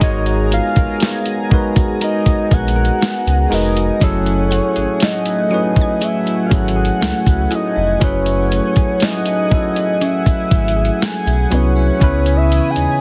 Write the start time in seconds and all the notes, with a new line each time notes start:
Already playing: B3 F#4 G#4 A#4 C#5 D#5 G#5 A#5 C#6 F6 G#6
0.00 G#1 G#3 D#4 F#4 A#4 C#5 D#5, kick, closed hi-hat
0.26 F#4, closed hi-hat
0.51 B3 F5, closed hi-hat
0.76 A#1 A#4, kick, closed hi-hat
1.00 B3, snare, closed hi-hat
1.26 F#4, closed hi-hat
1.50 G#3 D#4 F#4 A#4, kick
1.54 B4
1.76 F#4, kick, closed hi-hat
2.01 G#3 A#4 D#5, closed hi-hat
2.26 F#4, kick, closed hi-hat
2.51 A#1 B3 F#5, kick, closed hi-hat
2.68 closed hi-hat
2.76 A#4
2.85 closed hi-hat
3.01 B3, snare, closed hi-hat
3.26 C#2 F#4, closed hi-hat
3.50 F1 G#3 D#4 F#4 A#4 D#5, closed hi-hat, open hi-hat
3.54 B4
3.76 F#4, closed hi-hat
4.00 F#1 F#3 A3 C#4 E4 G#4 C#5 F#5 G#5, kick, closed hi-hat
4.04 A4
4.26 E4, closed hi-hat
4.51 A3 F#5, closed hi-hat
4.76 G#1 G#4, closed hi-hat
5.00 A3 D#5, snare, closed hi-hat
5.26 E4, closed hi-hat
5.50 F#3 C#4 E4 G#4 C#5
5.54 B4
5.76 E4, kick, closed hi-hat
5.81 G#5
6.01 F#3 G#4 E5, closed hi-hat
6.26 E4, closed hi-hat
6.46 F#3 F5
6.51 G#1 A3 C#4 E4 G#4 A4 F#5, kick, closed hi-hat
6.68 closed hi-hat
6.76 G#4
6.85 closed hi-hat
7.01 C#2 A3, snare, closed hi-hat
7.26 C#2 E4, kick, closed hi-hat
7.51 E4 G#4 D#5, closed hi-hat
7.76 F1 E4
8.00 F#1 F#3 C#4 E4 G#4, kick, closed hi-hat
8.04 B4 C#5
8.26 E4, closed hi-hat
8.51 A3, closed hi-hat
8.76 G#1 G#4, kick, closed hi-hat
9.00 A3 D#5, snare, closed hi-hat
9.26 E4, closed hi-hat
9.49 F#3 C#4 E4 G#4, kick
9.54 A4
9.76 E4, closed hi-hat
10.01 F#3 C#4 G#4 E5, closed hi-hat
10.26 E4, kick, closed hi-hat
10.51 G#1 A3, kick, closed hi-hat
10.68 closed hi-hat
10.76 G#4
10.85 closed hi-hat
11.01 A3 G#5, snare, closed hi-hat
11.26 B1 E4, closed hi-hat
11.50 C2 F#3 B3 C#4 E4 G#4 C#5, closed hi-hat
11.54 B4
11.76 E4
11.99 C#2 C#3 B3 C#4 E4 C#5 G#5 B5 D#6, kick, closed hi-hat
12.04 B4
12.26 B3, closed hi-hat
12.37 E5
12.51 E3, closed hi-hat
12.70 G#5
12.76 D#2 D#4, closed hi-hat